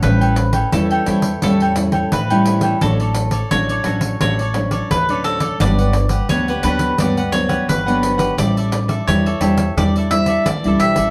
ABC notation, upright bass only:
X:1
M:4/4
L:1/16
Q:1/4=86
K:Amix
V:1 name="Upright bass" clef=bass
A,,,4 E,,2 E,,2 E,,4 A,,4 | A,,,4 A,,,2 A,,,2 A,,,4 D,,4 | G,,,4 D,,2 D,,2 D,,4 G,,,4 | A,,,4 E,,2 E,,2 E,,4 D,, C,, B,,, A,,, |]